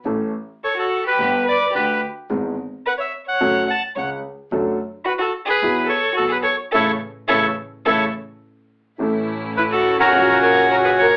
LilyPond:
<<
  \new Staff \with { instrumentName = "Bandoneon" } { \time 4/4 \key a \major \tempo 4 = 108 << { r4 cis''16 a'8 b'8. d''8 b'8 r8 | r4 fis''16 e''8 fis''8. a''8 fis''8 r8 | r4 b'16 a'8 b'8. cis''8 a'16 b'16 cis''8 | <e' a' cis''>8 r8 <e' a' cis''>8 r8 <e' a' cis''>8 r4. |
r4 b'16 a'8 bes'8. cis''8 ais'16 b'16 cis''8 | } \\ { r1 | r1 | r1 | r1 |
r4. r16 <cis' fis'>2 r16 | } >> }
  \new Staff \with { instrumentName = "Violin" } { \time 4/4 \key a \major r4 a'16 fis'8 g'8. b'8 g'8 r8 | r4 b'16 cis''8 cis''8. fis''8 cis''8 r8 | r4 fis'16 fis'8 gis'8. a'8 fis'16 gis'16 a'8 | a'8 r8 a'8 r8 a'8 r4. |
r4 e'16 fis'8 fis'8. ais'8 fis'16 gis'16 ais'8 | }
  \new Staff \with { instrumentName = "String section" } { \time 4/4 \key a \major r1 | r1 | r1 | r1 |
<a cis' e'>2 <ais cis' fis'>2 | }
  \new Staff \with { instrumentName = "Grand piano" } { \clef bass \time 4/4 \key a \major <a,, a, e a cis' a'>8 r4. <g,, g, d g b g'>8 r8 <d, d>8 r8 | <gis,, gis, e gis b gis'>8 r4. <fis, fis a cis' a'>8 r8 <cis, cis>8 r8 | <fis, fis a d' a'>8 r4. <e, e fis b e' gis'>8 r8 <b,, b,>8 r8 | <cis e a>8 r8 <cis e a>8 r8 <cis e a>8 r4. |
<a,, a, e a cis' a'>2 <ais,, ais, cis fis ais fis'>2 | }
  \new Staff \with { instrumentName = "Double bass" } { \clef bass \time 4/4 \key a \major a,,8 r4. g,,8 r8 d,8 r8 | gis,,8 r4. fis,,8 r8 cis,8 r8 | fis,,8 r4. e,8 r8 b,,8 r8 | a,,8 r8 a,,8 r8 a,,8 r4. |
a,,2 ais,,2 | }
>>